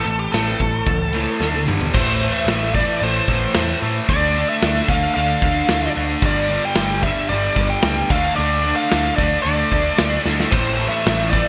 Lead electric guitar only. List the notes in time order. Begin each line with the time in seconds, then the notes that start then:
0.04 A4
0.19 G4
0.32 A4
1.94 C5
2.33 E5
2.75 D5
3.03 C5
4.09 D5
4.49 E5
4.90 F5
5.14 F5
6.26 D5
6.65 G5
7.03 E5
7.29 D5
7.70 G5
8.10 F5
8.36 D5
8.76 F5
9.16 D5
9.43 D5
10.52 C5
10.88 E5
11.30 D5